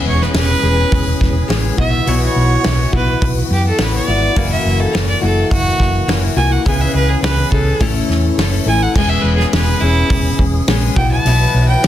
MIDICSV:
0, 0, Header, 1, 6, 480
1, 0, Start_track
1, 0, Key_signature, 4, "major"
1, 0, Tempo, 574163
1, 1728, Time_signature, 4, 2, 24, 8
1, 9926, End_track
2, 0, Start_track
2, 0, Title_t, "Fiddle"
2, 0, Program_c, 0, 110
2, 64, Note_on_c, 0, 73, 90
2, 184, Note_on_c, 0, 71, 74
2, 197, Note_off_c, 0, 73, 0
2, 286, Note_off_c, 0, 71, 0
2, 291, Note_on_c, 0, 71, 114
2, 1220, Note_off_c, 0, 71, 0
2, 1492, Note_on_c, 0, 76, 88
2, 1741, Note_on_c, 0, 73, 83
2, 1753, Note_off_c, 0, 76, 0
2, 1846, Note_off_c, 0, 73, 0
2, 1881, Note_on_c, 0, 73, 88
2, 2446, Note_off_c, 0, 73, 0
2, 2476, Note_on_c, 0, 71, 99
2, 2694, Note_off_c, 0, 71, 0
2, 2946, Note_on_c, 0, 67, 85
2, 3048, Note_off_c, 0, 67, 0
2, 3068, Note_on_c, 0, 69, 89
2, 3202, Note_on_c, 0, 71, 83
2, 3214, Note_off_c, 0, 69, 0
2, 3297, Note_off_c, 0, 71, 0
2, 3302, Note_on_c, 0, 74, 103
2, 3760, Note_off_c, 0, 74, 0
2, 3772, Note_on_c, 0, 76, 81
2, 4010, Note_on_c, 0, 69, 79
2, 4023, Note_off_c, 0, 76, 0
2, 4241, Note_off_c, 0, 69, 0
2, 4248, Note_on_c, 0, 74, 85
2, 4359, Note_off_c, 0, 74, 0
2, 4369, Note_on_c, 0, 69, 84
2, 4601, Note_off_c, 0, 69, 0
2, 4605, Note_on_c, 0, 66, 109
2, 5071, Note_off_c, 0, 66, 0
2, 5322, Note_on_c, 0, 80, 100
2, 5445, Note_on_c, 0, 78, 87
2, 5458, Note_off_c, 0, 80, 0
2, 5557, Note_off_c, 0, 78, 0
2, 5574, Note_on_c, 0, 80, 77
2, 5691, Note_on_c, 0, 76, 86
2, 5704, Note_off_c, 0, 80, 0
2, 5801, Note_off_c, 0, 76, 0
2, 5814, Note_on_c, 0, 71, 95
2, 5922, Note_on_c, 0, 68, 83
2, 5935, Note_off_c, 0, 71, 0
2, 6031, Note_off_c, 0, 68, 0
2, 6036, Note_on_c, 0, 71, 96
2, 6274, Note_off_c, 0, 71, 0
2, 6282, Note_on_c, 0, 69, 84
2, 6751, Note_off_c, 0, 69, 0
2, 7257, Note_on_c, 0, 80, 92
2, 7374, Note_on_c, 0, 78, 84
2, 7387, Note_off_c, 0, 80, 0
2, 7481, Note_off_c, 0, 78, 0
2, 7486, Note_on_c, 0, 80, 89
2, 7597, Note_on_c, 0, 76, 88
2, 7610, Note_off_c, 0, 80, 0
2, 7702, Note_on_c, 0, 71, 90
2, 7714, Note_off_c, 0, 76, 0
2, 7820, Note_off_c, 0, 71, 0
2, 7825, Note_on_c, 0, 68, 86
2, 7945, Note_off_c, 0, 68, 0
2, 7950, Note_on_c, 0, 71, 89
2, 8195, Note_on_c, 0, 64, 99
2, 8207, Note_off_c, 0, 71, 0
2, 8669, Note_off_c, 0, 64, 0
2, 9162, Note_on_c, 0, 79, 96
2, 9279, Note_off_c, 0, 79, 0
2, 9291, Note_on_c, 0, 81, 96
2, 9759, Note_off_c, 0, 81, 0
2, 9765, Note_on_c, 0, 79, 89
2, 9926, Note_off_c, 0, 79, 0
2, 9926, End_track
3, 0, Start_track
3, 0, Title_t, "Tonewheel organ"
3, 0, Program_c, 1, 16
3, 0, Note_on_c, 1, 52, 65
3, 0, Note_on_c, 1, 61, 57
3, 0, Note_on_c, 1, 68, 73
3, 1472, Note_off_c, 1, 61, 0
3, 1475, Note_off_c, 1, 68, 0
3, 1494, Note_on_c, 1, 66, 73
3, 1499, Note_on_c, 1, 59, 62
3, 3615, Note_off_c, 1, 52, 0
3, 3630, Note_off_c, 1, 59, 0
3, 3659, Note_on_c, 1, 58, 57
3, 3670, Note_on_c, 1, 52, 65
3, 5536, Note_off_c, 1, 66, 0
3, 5554, Note_off_c, 1, 58, 0
3, 5575, Note_on_c, 1, 61, 60
3, 5580, Note_on_c, 1, 71, 76
3, 6525, Note_off_c, 1, 71, 0
3, 6531, Note_on_c, 1, 69, 76
3, 7476, Note_on_c, 1, 68, 65
3, 7481, Note_off_c, 1, 69, 0
3, 9144, Note_off_c, 1, 61, 0
3, 9144, Note_on_c, 1, 54, 70
3, 9145, Note_on_c, 1, 71, 67
3, 9150, Note_off_c, 1, 68, 0
3, 9151, Note_off_c, 1, 52, 0
3, 9153, Note_on_c, 1, 64, 59
3, 9926, Note_off_c, 1, 54, 0
3, 9926, Note_off_c, 1, 64, 0
3, 9926, Note_off_c, 1, 71, 0
3, 9926, End_track
4, 0, Start_track
4, 0, Title_t, "Steel-string acoustic guitar"
4, 0, Program_c, 2, 25
4, 0, Note_on_c, 2, 52, 71
4, 0, Note_on_c, 2, 56, 72
4, 0, Note_on_c, 2, 59, 78
4, 0, Note_on_c, 2, 61, 69
4, 0, Note_on_c, 2, 68, 83
4, 272, Note_off_c, 2, 56, 0
4, 282, Note_on_c, 2, 56, 54
4, 286, Note_off_c, 2, 59, 0
4, 289, Note_off_c, 2, 61, 0
4, 289, Note_on_c, 2, 59, 57
4, 294, Note_off_c, 2, 68, 0
4, 299, Note_on_c, 2, 61, 62
4, 304, Note_on_c, 2, 68, 68
4, 512, Note_off_c, 2, 68, 0
4, 522, Note_on_c, 2, 68, 50
4, 526, Note_off_c, 2, 56, 0
4, 526, Note_off_c, 2, 61, 0
4, 530, Note_off_c, 2, 59, 0
4, 536, Note_on_c, 2, 61, 50
4, 545, Note_on_c, 2, 59, 43
4, 1234, Note_off_c, 2, 59, 0
4, 1237, Note_on_c, 2, 56, 60
4, 1240, Note_off_c, 2, 61, 0
4, 1244, Note_on_c, 2, 59, 67
4, 1245, Note_off_c, 2, 68, 0
4, 1250, Note_on_c, 2, 61, 68
4, 1256, Note_on_c, 2, 68, 70
4, 1478, Note_off_c, 2, 68, 0
4, 1481, Note_on_c, 2, 66, 54
4, 1482, Note_off_c, 2, 56, 0
4, 1486, Note_off_c, 2, 59, 0
4, 1489, Note_off_c, 2, 61, 0
4, 1493, Note_on_c, 2, 64, 43
4, 1503, Note_on_c, 2, 59, 41
4, 1507, Note_off_c, 2, 52, 0
4, 1724, Note_off_c, 2, 66, 0
4, 1726, Note_off_c, 2, 59, 0
4, 1726, Note_on_c, 2, 47, 78
4, 1731, Note_off_c, 2, 64, 0
4, 1733, Note_on_c, 2, 52, 76
4, 1736, Note_on_c, 2, 59, 75
4, 1741, Note_on_c, 2, 64, 78
4, 1743, Note_on_c, 2, 66, 78
4, 2205, Note_off_c, 2, 52, 0
4, 2206, Note_off_c, 2, 59, 0
4, 2207, Note_off_c, 2, 47, 0
4, 2209, Note_on_c, 2, 52, 64
4, 2216, Note_on_c, 2, 59, 62
4, 2220, Note_off_c, 2, 64, 0
4, 2221, Note_off_c, 2, 66, 0
4, 2223, Note_on_c, 2, 64, 62
4, 2224, Note_on_c, 2, 66, 62
4, 2434, Note_off_c, 2, 66, 0
4, 2442, Note_off_c, 2, 64, 0
4, 2444, Note_on_c, 2, 66, 48
4, 2448, Note_off_c, 2, 52, 0
4, 2451, Note_off_c, 2, 59, 0
4, 2452, Note_on_c, 2, 64, 45
4, 2466, Note_on_c, 2, 59, 39
4, 3160, Note_off_c, 2, 59, 0
4, 3165, Note_off_c, 2, 66, 0
4, 3166, Note_on_c, 2, 52, 63
4, 3170, Note_on_c, 2, 59, 66
4, 3177, Note_off_c, 2, 64, 0
4, 3181, Note_on_c, 2, 64, 70
4, 3186, Note_on_c, 2, 66, 58
4, 3396, Note_off_c, 2, 66, 0
4, 3406, Note_off_c, 2, 52, 0
4, 3407, Note_on_c, 2, 66, 56
4, 3408, Note_off_c, 2, 59, 0
4, 3409, Note_off_c, 2, 64, 0
4, 3419, Note_on_c, 2, 64, 50
4, 3423, Note_on_c, 2, 59, 41
4, 3644, Note_off_c, 2, 64, 0
4, 3644, Note_on_c, 2, 42, 83
4, 3646, Note_off_c, 2, 66, 0
4, 3647, Note_off_c, 2, 59, 0
4, 3647, Note_on_c, 2, 49, 80
4, 3650, Note_on_c, 2, 52, 78
4, 3651, Note_on_c, 2, 58, 88
4, 3654, Note_on_c, 2, 64, 82
4, 3658, Note_on_c, 2, 66, 83
4, 4109, Note_off_c, 2, 52, 0
4, 4113, Note_off_c, 2, 58, 0
4, 4113, Note_on_c, 2, 52, 60
4, 4123, Note_on_c, 2, 58, 65
4, 4124, Note_off_c, 2, 64, 0
4, 4125, Note_off_c, 2, 42, 0
4, 4126, Note_off_c, 2, 66, 0
4, 4127, Note_off_c, 2, 49, 0
4, 4127, Note_on_c, 2, 64, 63
4, 4136, Note_on_c, 2, 66, 65
4, 4346, Note_off_c, 2, 66, 0
4, 4353, Note_off_c, 2, 64, 0
4, 4356, Note_on_c, 2, 66, 56
4, 4359, Note_off_c, 2, 52, 0
4, 4360, Note_off_c, 2, 58, 0
4, 4363, Note_on_c, 2, 64, 50
4, 4370, Note_on_c, 2, 58, 42
4, 4379, Note_on_c, 2, 52, 40
4, 5075, Note_off_c, 2, 58, 0
4, 5079, Note_off_c, 2, 52, 0
4, 5082, Note_off_c, 2, 66, 0
4, 5083, Note_on_c, 2, 52, 72
4, 5085, Note_on_c, 2, 58, 73
4, 5091, Note_off_c, 2, 64, 0
4, 5094, Note_on_c, 2, 64, 67
4, 5101, Note_on_c, 2, 66, 70
4, 5310, Note_off_c, 2, 66, 0
4, 5320, Note_on_c, 2, 66, 57
4, 5321, Note_off_c, 2, 64, 0
4, 5322, Note_off_c, 2, 58, 0
4, 5325, Note_off_c, 2, 52, 0
4, 5331, Note_on_c, 2, 64, 53
4, 5332, Note_on_c, 2, 58, 49
4, 5338, Note_on_c, 2, 52, 42
4, 5553, Note_off_c, 2, 52, 0
4, 5559, Note_on_c, 2, 49, 70
4, 5561, Note_off_c, 2, 58, 0
4, 5563, Note_off_c, 2, 66, 0
4, 5563, Note_on_c, 2, 52, 69
4, 5565, Note_on_c, 2, 59, 83
4, 5568, Note_off_c, 2, 64, 0
4, 5571, Note_on_c, 2, 61, 78
4, 5574, Note_on_c, 2, 68, 74
4, 6038, Note_off_c, 2, 52, 0
4, 6039, Note_off_c, 2, 59, 0
4, 6041, Note_on_c, 2, 52, 51
4, 6043, Note_off_c, 2, 49, 0
4, 6049, Note_off_c, 2, 68, 0
4, 6049, Note_on_c, 2, 59, 56
4, 6051, Note_off_c, 2, 61, 0
4, 6055, Note_on_c, 2, 61, 58
4, 6059, Note_on_c, 2, 68, 63
4, 6277, Note_off_c, 2, 68, 0
4, 6285, Note_off_c, 2, 52, 0
4, 6287, Note_on_c, 2, 68, 52
4, 6288, Note_off_c, 2, 59, 0
4, 6289, Note_off_c, 2, 61, 0
4, 6299, Note_on_c, 2, 61, 43
4, 6312, Note_on_c, 2, 59, 47
4, 6520, Note_off_c, 2, 61, 0
4, 6522, Note_on_c, 2, 45, 78
4, 6525, Note_on_c, 2, 52, 80
4, 6527, Note_off_c, 2, 59, 0
4, 6528, Note_off_c, 2, 68, 0
4, 6529, Note_on_c, 2, 57, 76
4, 6530, Note_on_c, 2, 61, 90
4, 6531, Note_on_c, 2, 64, 90
4, 6535, Note_on_c, 2, 69, 77
4, 6993, Note_off_c, 2, 57, 0
4, 7004, Note_off_c, 2, 61, 0
4, 7004, Note_on_c, 2, 57, 71
4, 7006, Note_off_c, 2, 45, 0
4, 7012, Note_off_c, 2, 69, 0
4, 7014, Note_on_c, 2, 61, 74
4, 7018, Note_off_c, 2, 64, 0
4, 7021, Note_on_c, 2, 64, 77
4, 7026, Note_on_c, 2, 69, 74
4, 7237, Note_off_c, 2, 69, 0
4, 7242, Note_off_c, 2, 64, 0
4, 7246, Note_off_c, 2, 57, 0
4, 7247, Note_off_c, 2, 61, 0
4, 7247, Note_on_c, 2, 69, 52
4, 7252, Note_on_c, 2, 64, 52
4, 7257, Note_on_c, 2, 61, 44
4, 7263, Note_on_c, 2, 57, 41
4, 7488, Note_off_c, 2, 69, 0
4, 7491, Note_off_c, 2, 64, 0
4, 7492, Note_off_c, 2, 52, 0
4, 7494, Note_off_c, 2, 61, 0
4, 7495, Note_on_c, 2, 52, 77
4, 7496, Note_off_c, 2, 57, 0
4, 7500, Note_on_c, 2, 56, 86
4, 7502, Note_on_c, 2, 59, 83
4, 7505, Note_on_c, 2, 68, 88
4, 7506, Note_on_c, 2, 61, 79
4, 7959, Note_off_c, 2, 56, 0
4, 7969, Note_on_c, 2, 56, 59
4, 7974, Note_off_c, 2, 59, 0
4, 7976, Note_off_c, 2, 61, 0
4, 7977, Note_on_c, 2, 59, 63
4, 7978, Note_off_c, 2, 68, 0
4, 7986, Note_on_c, 2, 61, 66
4, 7992, Note_on_c, 2, 68, 66
4, 8201, Note_off_c, 2, 68, 0
4, 8210, Note_off_c, 2, 56, 0
4, 8210, Note_off_c, 2, 61, 0
4, 8211, Note_on_c, 2, 68, 58
4, 8214, Note_off_c, 2, 59, 0
4, 8220, Note_on_c, 2, 61, 45
4, 8232, Note_on_c, 2, 59, 42
4, 8928, Note_on_c, 2, 56, 68
4, 8929, Note_off_c, 2, 59, 0
4, 8931, Note_off_c, 2, 61, 0
4, 8932, Note_off_c, 2, 68, 0
4, 8939, Note_on_c, 2, 59, 72
4, 8941, Note_on_c, 2, 61, 68
4, 8949, Note_on_c, 2, 68, 80
4, 9165, Note_off_c, 2, 68, 0
4, 9168, Note_on_c, 2, 66, 53
4, 9171, Note_off_c, 2, 56, 0
4, 9176, Note_off_c, 2, 59, 0
4, 9177, Note_off_c, 2, 61, 0
4, 9183, Note_on_c, 2, 64, 52
4, 9191, Note_on_c, 2, 59, 41
4, 9193, Note_off_c, 2, 52, 0
4, 9408, Note_off_c, 2, 59, 0
4, 9410, Note_on_c, 2, 47, 68
4, 9411, Note_off_c, 2, 66, 0
4, 9415, Note_off_c, 2, 64, 0
4, 9418, Note_on_c, 2, 52, 80
4, 9418, Note_on_c, 2, 59, 82
4, 9424, Note_on_c, 2, 66, 94
4, 9425, Note_on_c, 2, 64, 85
4, 9880, Note_off_c, 2, 52, 0
4, 9884, Note_on_c, 2, 52, 53
4, 9886, Note_off_c, 2, 59, 0
4, 9893, Note_off_c, 2, 47, 0
4, 9896, Note_on_c, 2, 59, 61
4, 9898, Note_off_c, 2, 64, 0
4, 9904, Note_off_c, 2, 66, 0
4, 9926, Note_off_c, 2, 52, 0
4, 9926, Note_off_c, 2, 59, 0
4, 9926, End_track
5, 0, Start_track
5, 0, Title_t, "Fingered electric bass"
5, 0, Program_c, 3, 33
5, 45, Note_on_c, 3, 28, 75
5, 214, Note_off_c, 3, 28, 0
5, 283, Note_on_c, 3, 28, 77
5, 452, Note_off_c, 3, 28, 0
5, 526, Note_on_c, 3, 28, 90
5, 694, Note_off_c, 3, 28, 0
5, 774, Note_on_c, 3, 28, 79
5, 939, Note_off_c, 3, 28, 0
5, 1014, Note_on_c, 3, 28, 84
5, 1179, Note_off_c, 3, 28, 0
5, 1247, Note_on_c, 3, 33, 86
5, 1415, Note_off_c, 3, 33, 0
5, 1492, Note_on_c, 3, 35, 89
5, 1657, Note_off_c, 3, 35, 0
5, 1731, Note_on_c, 3, 35, 86
5, 1897, Note_off_c, 3, 35, 0
5, 1972, Note_on_c, 3, 35, 75
5, 2137, Note_off_c, 3, 35, 0
5, 2209, Note_on_c, 3, 35, 86
5, 2375, Note_off_c, 3, 35, 0
5, 2451, Note_on_c, 3, 35, 86
5, 2617, Note_off_c, 3, 35, 0
5, 2694, Note_on_c, 3, 35, 88
5, 2859, Note_off_c, 3, 35, 0
5, 2929, Note_on_c, 3, 42, 84
5, 3095, Note_off_c, 3, 42, 0
5, 3167, Note_on_c, 3, 33, 90
5, 3334, Note_off_c, 3, 33, 0
5, 3409, Note_on_c, 3, 32, 84
5, 3575, Note_off_c, 3, 32, 0
5, 3650, Note_on_c, 3, 30, 88
5, 3816, Note_off_c, 3, 30, 0
5, 3886, Note_on_c, 3, 30, 82
5, 4053, Note_off_c, 3, 30, 0
5, 4134, Note_on_c, 3, 30, 80
5, 4298, Note_off_c, 3, 30, 0
5, 4370, Note_on_c, 3, 30, 90
5, 4536, Note_off_c, 3, 30, 0
5, 4610, Note_on_c, 3, 30, 83
5, 4776, Note_off_c, 3, 30, 0
5, 4846, Note_on_c, 3, 30, 85
5, 5013, Note_off_c, 3, 30, 0
5, 5081, Note_on_c, 3, 30, 83
5, 5250, Note_off_c, 3, 30, 0
5, 5319, Note_on_c, 3, 36, 87
5, 5489, Note_off_c, 3, 36, 0
5, 5570, Note_on_c, 3, 37, 90
5, 5736, Note_off_c, 3, 37, 0
5, 5804, Note_on_c, 3, 37, 81
5, 5972, Note_off_c, 3, 37, 0
5, 6039, Note_on_c, 3, 37, 81
5, 6209, Note_off_c, 3, 37, 0
5, 6287, Note_on_c, 3, 37, 87
5, 6455, Note_off_c, 3, 37, 0
5, 6528, Note_on_c, 3, 33, 81
5, 6695, Note_off_c, 3, 33, 0
5, 6767, Note_on_c, 3, 40, 80
5, 6935, Note_off_c, 3, 40, 0
5, 7004, Note_on_c, 3, 30, 88
5, 7173, Note_off_c, 3, 30, 0
5, 7239, Note_on_c, 3, 33, 82
5, 7410, Note_off_c, 3, 33, 0
5, 7487, Note_on_c, 3, 28, 88
5, 7655, Note_off_c, 3, 28, 0
5, 7718, Note_on_c, 3, 28, 77
5, 7890, Note_off_c, 3, 28, 0
5, 7962, Note_on_c, 3, 28, 81
5, 8133, Note_off_c, 3, 28, 0
5, 8203, Note_on_c, 3, 28, 92
5, 8373, Note_off_c, 3, 28, 0
5, 8445, Note_on_c, 3, 28, 82
5, 8615, Note_off_c, 3, 28, 0
5, 8689, Note_on_c, 3, 28, 86
5, 8858, Note_off_c, 3, 28, 0
5, 8924, Note_on_c, 3, 34, 82
5, 9094, Note_off_c, 3, 34, 0
5, 9166, Note_on_c, 3, 35, 91
5, 9336, Note_off_c, 3, 35, 0
5, 9405, Note_on_c, 3, 35, 84
5, 9575, Note_off_c, 3, 35, 0
5, 9649, Note_on_c, 3, 35, 84
5, 9819, Note_off_c, 3, 35, 0
5, 9898, Note_on_c, 3, 35, 85
5, 9926, Note_off_c, 3, 35, 0
5, 9926, End_track
6, 0, Start_track
6, 0, Title_t, "Drums"
6, 179, Note_on_c, 9, 38, 27
6, 262, Note_off_c, 9, 38, 0
6, 285, Note_on_c, 9, 46, 59
6, 289, Note_on_c, 9, 38, 117
6, 369, Note_off_c, 9, 46, 0
6, 373, Note_off_c, 9, 38, 0
6, 767, Note_on_c, 9, 46, 57
6, 770, Note_on_c, 9, 36, 112
6, 851, Note_off_c, 9, 46, 0
6, 854, Note_off_c, 9, 36, 0
6, 1012, Note_on_c, 9, 36, 80
6, 1019, Note_on_c, 9, 38, 28
6, 1096, Note_off_c, 9, 36, 0
6, 1102, Note_off_c, 9, 38, 0
6, 1252, Note_on_c, 9, 46, 55
6, 1257, Note_on_c, 9, 38, 111
6, 1336, Note_off_c, 9, 46, 0
6, 1340, Note_off_c, 9, 38, 0
6, 1491, Note_on_c, 9, 36, 93
6, 1574, Note_off_c, 9, 36, 0
6, 1732, Note_on_c, 9, 46, 50
6, 1815, Note_off_c, 9, 46, 0
6, 2207, Note_on_c, 9, 46, 54
6, 2211, Note_on_c, 9, 38, 112
6, 2291, Note_off_c, 9, 46, 0
6, 2295, Note_off_c, 9, 38, 0
6, 2450, Note_on_c, 9, 36, 84
6, 2534, Note_off_c, 9, 36, 0
6, 2691, Note_on_c, 9, 36, 121
6, 2691, Note_on_c, 9, 46, 63
6, 2775, Note_off_c, 9, 36, 0
6, 2775, Note_off_c, 9, 46, 0
6, 3162, Note_on_c, 9, 46, 61
6, 3166, Note_on_c, 9, 38, 112
6, 3246, Note_off_c, 9, 46, 0
6, 3250, Note_off_c, 9, 38, 0
6, 3646, Note_on_c, 9, 46, 59
6, 3649, Note_on_c, 9, 36, 114
6, 3730, Note_off_c, 9, 46, 0
6, 3732, Note_off_c, 9, 36, 0
6, 4133, Note_on_c, 9, 46, 61
6, 4138, Note_on_c, 9, 38, 121
6, 4217, Note_off_c, 9, 46, 0
6, 4221, Note_off_c, 9, 38, 0
6, 4609, Note_on_c, 9, 36, 114
6, 4615, Note_on_c, 9, 46, 62
6, 4693, Note_off_c, 9, 36, 0
6, 4698, Note_off_c, 9, 46, 0
6, 4847, Note_on_c, 9, 36, 74
6, 4852, Note_on_c, 9, 38, 34
6, 4930, Note_off_c, 9, 36, 0
6, 4936, Note_off_c, 9, 38, 0
6, 5089, Note_on_c, 9, 46, 55
6, 5093, Note_on_c, 9, 38, 108
6, 5172, Note_off_c, 9, 46, 0
6, 5177, Note_off_c, 9, 38, 0
6, 5569, Note_on_c, 9, 36, 102
6, 5571, Note_on_c, 9, 46, 56
6, 5652, Note_off_c, 9, 36, 0
6, 5654, Note_off_c, 9, 46, 0
6, 6050, Note_on_c, 9, 46, 56
6, 6054, Note_on_c, 9, 38, 122
6, 6133, Note_off_c, 9, 46, 0
6, 6137, Note_off_c, 9, 38, 0
6, 6286, Note_on_c, 9, 36, 79
6, 6370, Note_off_c, 9, 36, 0
6, 6526, Note_on_c, 9, 36, 121
6, 6526, Note_on_c, 9, 46, 61
6, 6609, Note_off_c, 9, 46, 0
6, 6610, Note_off_c, 9, 36, 0
6, 6773, Note_on_c, 9, 38, 32
6, 6857, Note_off_c, 9, 38, 0
6, 7010, Note_on_c, 9, 46, 61
6, 7014, Note_on_c, 9, 38, 108
6, 7093, Note_off_c, 9, 46, 0
6, 7097, Note_off_c, 9, 38, 0
6, 7487, Note_on_c, 9, 36, 106
6, 7487, Note_on_c, 9, 49, 91
6, 7570, Note_off_c, 9, 36, 0
6, 7571, Note_off_c, 9, 49, 0
6, 7855, Note_on_c, 9, 38, 32
6, 7939, Note_off_c, 9, 38, 0
6, 7965, Note_on_c, 9, 46, 61
6, 7969, Note_on_c, 9, 38, 113
6, 8049, Note_off_c, 9, 46, 0
6, 8053, Note_off_c, 9, 38, 0
6, 8445, Note_on_c, 9, 36, 115
6, 8446, Note_on_c, 9, 46, 59
6, 8529, Note_off_c, 9, 36, 0
6, 8529, Note_off_c, 9, 46, 0
6, 8686, Note_on_c, 9, 36, 78
6, 8769, Note_off_c, 9, 36, 0
6, 8925, Note_on_c, 9, 46, 55
6, 8929, Note_on_c, 9, 38, 116
6, 9008, Note_off_c, 9, 46, 0
6, 9013, Note_off_c, 9, 38, 0
6, 9166, Note_on_c, 9, 36, 106
6, 9249, Note_off_c, 9, 36, 0
6, 9409, Note_on_c, 9, 46, 54
6, 9493, Note_off_c, 9, 46, 0
6, 9894, Note_on_c, 9, 46, 54
6, 9898, Note_on_c, 9, 38, 107
6, 9926, Note_off_c, 9, 38, 0
6, 9926, Note_off_c, 9, 46, 0
6, 9926, End_track
0, 0, End_of_file